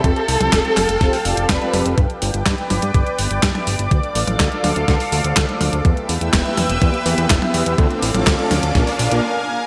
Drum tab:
HH |xxoxxxoxxooxxxox|xxoxxxoxxxoxxxox|xxoxxxoxxooxxxox|xxoxxxoxxxoxxxox|
CP |----x-x-----x---|----x-------x---|----x-------x---|----x-------x---|
SD |----o---o---o---|----o-------o---|----o---o---o---|----o-------o---|
T1 |---o--o-------o-|------o-----oo--|---o--o-------o-|------o-----oo--|
BD |o---o---o---o---|o---o---o---o---|o---o---o---o---|o---o---o---o---|

HH |xxoxxxoxxoox----|
CP |----x-----------|
SD |----o---o-------|
T1 |---o--o---------|
BD |o---o---o-------|